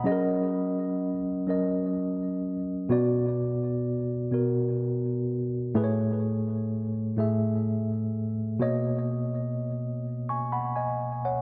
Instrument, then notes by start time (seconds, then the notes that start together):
tine electric piano
Already playing: F#5 B5
0.04 F#3 C#4 G#4 D#5
0.12 A#4
1.47 F#3 C#4 A#4 D#5
2.89 B2 B3 F#4 D5
4.31 B2 B3 F#4 A#4
5.75 A2 A3 G#4 B4
5.84 C#5
7.17 A2 A3 G#4 E5
8.59 B2 A#3 C#5 D#5
10.29 G#5 C#6
10.52 F#5 B5
10.76 D#5 G#5
11.25 C#5 F#5